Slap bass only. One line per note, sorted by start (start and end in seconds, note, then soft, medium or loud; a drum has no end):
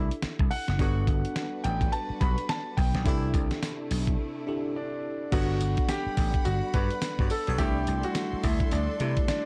0.23 muted slap bass stroke soft
0.40 0.49 C2 loud
0.69 0.78 F#1 loud
0.80 1.03 G1 loud
1.07 1.22 G1 loud
1.65 1.88 A1 loud
2.10 muted slap bass stroke soft
2.21 2.35 B1 loud
2.78 2.92 B1 medium
2.95 3.04 B1 medium
3.06 3.29 C2 loud
3.34 3.48 C2 medium
3.91 4.14 B1 loud
5.32 5.56 G1 loud
5.61 5.75 G1 loud
6.07 muted slap bass stroke medium
6.18 6.31 A1 medium
6.46 6.60 G1 loud
6.74 6.88 G2 loud
7.19 7.28 G2 loud
7.48 7.57 B1 medium
7.59 7.82 C2 loud
7.88 8.01 C2 loud
8.33 muted slap bass stroke soft
8.44 8.58 D2 medium
8.72 8.86 D2 medium
9.00 9.14 C3 loud
9.29 muted slap bass stroke soft